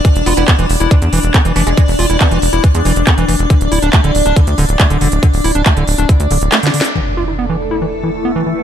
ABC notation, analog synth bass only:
X:1
M:4/4
L:1/16
Q:1/4=139
K:none
V:1 name="Analog synth bass" clef=bass
z E,,, E,,, E,,, z E,,, E,,, E,,, z E,, E,,, E,,, z E,,, F,,, E,,, | z E,,, E,,, E,,, z E,,, E,,, E,,, z E,, E,,, E,,, z E,,, F,,, E,,, | z D,,, D,,, D,,, z D,,, D,,, D,,, z D,, D,,, D,,, z D,,, E,,, D,,, | z D,,, D,,, D,,, z D,,, D,,, D,,, z D,, D,,, D,,, z4 |
z16 |]